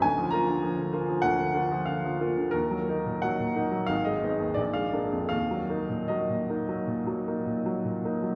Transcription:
<<
  \new Staff \with { instrumentName = "Upright piano" } { \time 4/4 \key bes \phrygian \tempo 4 = 87 aes''8 bes''4. ges''4 f''4 | bes'4 ges''4 f''16 ees''8. d''16 f''8. | f''4 ees''2~ ees''8 r8 | }
  \new Staff \with { instrumentName = "Upright piano" } { \clef bass \time 4/4 \key bes \phrygian d,16 f16 <bes f'>16 d16 f16 d16 <bes f'>16 f16 d,16 d16 <bes f'>16 f16 d16 f16 <bes f'>16 d16 | ees,16 ges16 <bes ees'>16 bes,16 ges16 bes,16 <bes ees'>16 ges16 aes,,16 aes16 <ces' ees'>16 ees,16 bes,,16 aes16 <bes d'>16 f,16 | ees,16 ges16 <bes ees'>16 bes,16 ges16 bes,16 <bes ees'>16 ges16 bes,16 ges16 <bes ees'>16 bes,16 ges16 bes,16 <bes ees'>16 ges16 | }
>>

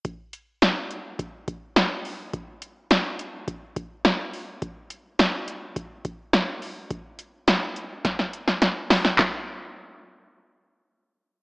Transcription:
\new DrumStaff \with { instrumentName = "Drums" } \drummode { \time 4/4 \tempo 4 = 105 <hh bd>8 hh8 <hh sn>8 hh8 <hh bd>8 <hh bd>8 <hh sn>8 hho8 | <hh bd>8 hh8 <hh sn>8 hh8 <hh bd>8 <hh bd>8 <hh sn>8 hho8 | <hh bd>8 hh8 <hh sn>8 hh8 <hh bd>8 <hh bd>8 <hh sn>8 hho8 | <hh bd>8 hh8 <hh sn>8 hh8 <hh bd sn>16 sn16 hh16 sn16 <hh sn>8 <hho sn>16 sn16 |
<hc bd sn>4 r4 r4 r4 | }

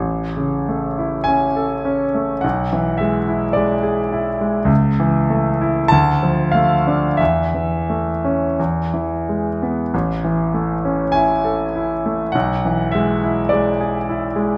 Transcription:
<<
  \new Staff \with { instrumentName = "Grand piano" } { \time 4/4 \key a \major \tempo 4 = 50 r4 gis''4 fis''8 e''8 d''4 | r4 a''8 f''8 e''4 r4 | r4 gis''4 fis''8 e''8 d''4 | }
  \new Staff \with { instrumentName = "Grand piano" } { \time 4/4 \key a \major a,,16 cis16 a16 e'16 cis'16 a'16 cis'16 a16 b,,16 e16 gis16 e'16 gis16 gis'16 e'16 gis16 | cis,16 e16 a16 e'16 d,16 f16 a16 d'16 e,16 e16 a16 cis'16 e,16 e16 gis16 b16 | a,,16 e16 a16 cis'16 e'16 a'16 e'16 a16 b,,16 e16 gis16 e'16 gis16 gis'16 e'16 gis16 | }
>>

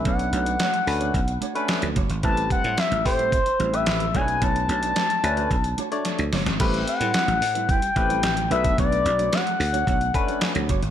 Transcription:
<<
  \new Staff \with { instrumentName = "Analog synth lead" } { \time 4/4 \key b \phrygian \tempo 4 = 110 fis''2.~ fis''8 r8 | a''8 fis''8 e''8 c''4~ c''16 e''8. gis''8 | a''2.~ a''8 r8 | r8 fis''4. g''4. e''8 |
d''4 fis''2~ fis''8 r8 | }
  \new Staff \with { instrumentName = "Clean electric guitar" } { \time 4/4 \key b \phrygian <a d' fis' cis''>16 r16 <a d' fis' cis''>16 <a d' fis' d''>16 <a d' fis' cis''>16 r8 <a d' fis' cis''>16 r8 <a d' fis' cis''>16 <a d' fis' cis''>16 r8 <a d' fis' cis''>16 r16 | <g c' e' b'>16 r16 <g c' e' b'>16 <g c' e' c''>16 <g c' e' b'>16 r8 <g c' e' b'>16 r8 <g c' e' b'>16 <g e' b'>16 r8 <a d' fis' cis''>16 r16 | <a d' fis' cis''>16 r16 <a d' fis' cis''>16 <a d' fis' d''>16 <a d' fis' cis''>16 r8 <a d' fis' cis''>16 r8 <a d' fis' cis''>16 <a d' fis' cis''>16 r8 <a d' fis' cis''>16 r16 | <g c' e' b'>16 r8 <g c' e' b'>16 <g c' e' b'>16 r8 <g c' e' b'>16 <g c' e' b'>16 r8 <g c' e' c''>16 r8 <a d' fis' cis''>16 r16 |
<a d' fis' cis''>16 r8 <a d' fis' cis''>16 <a d' fis' cis''>16 r8 <a d' fis' cis''>16 <a d' fis' cis''>16 r8 <a d' fis' d''>16 r16 <a d' fis' cis''>16 <a d' fis' cis''>16 r16 | }
  \new Staff \with { instrumentName = "Tine electric piano" } { \time 4/4 \key b \phrygian <a cis' d' b'>4 r8 <a cis' d' b'>8 r8. <a cis' d' b'>8 r8. | <a c' g' b'>8. r8. <a c' g' c''>8 r8. <a c' g' b'>8 r16 <a cis' d' a' b'>8~ | <a cis' d' a' b'>4 r8 <a cis' d' b'>8 r8. <a d' cis'' d''>8 r8. | <a c' g' b'>4 r4. <a c' g' b'>8. r16 <a b d' b'>8~ |
<a b d' b'>4 r4. <a cis' d' b'>8. r8. | }
  \new Staff \with { instrumentName = "Slap bass" } { \clef bass \time 4/4 \key b \phrygian b,,8 b,,8 r8 d,8 b,,8 r8. d,16 fis,,16 gis,,16 | a,,8 r16 a,16 r16 a,,16 a,8. r16 a,,8 a,,8 b,,8 | b,,8 b,,8 r8 d,8 b,,8 r8. d,16 fis,,16 gis,,16 | a,,8 r16 a,16 r16 a,,16 a,8. r16 a,,8 a,,8 b,,8 |
b,,8 b,,8 r8 d,8 b,,8 r8. d,16 fis,,16 gis,,16 | }
  \new DrumStaff \with { instrumentName = "Drums" } \drummode { \time 4/4 <hh bd>16 hh16 hh16 hh16 <hc hh sn>16 hh16 hho16 hh16 <hh bd>16 hh16 hh16 hh16 <hc hh sn>16 hh16 <hh bd>16 hh16 | <hh bd>16 hh16 <hh bd>16 hh16 <hc hh sn>16 hh16 <hho bd>16 hh16 <hh bd>16 hh16 hh16 hh16 <hc hh sn>16 hh16 <hh bd>16 hh16 | <hh bd>16 hh16 hh16 hh16 <hc hh sn>16 hh16 hh16 hh16 <hh bd>16 hh16 hh16 hh16 <hh sn>16 hh16 <hho sn>16 <hh sn>16 | <cymc hh bd>16 hh16 hh16 hh16 <hc hh sn>16 hh16 hho16 hh16 <hh bd>16 hh16 <hh bd>16 hh16 <hc hh sn>16 hh16 hh16 <hh bd>16 |
<hh bd>16 hh16 hh16 hh16 <hc hh sn>16 hh16 hho16 hh16 <hh bd>16 hh16 <hh bd>16 hh16 <hc hh sn>16 hh16 <hh bd>16 hh16 | }
>>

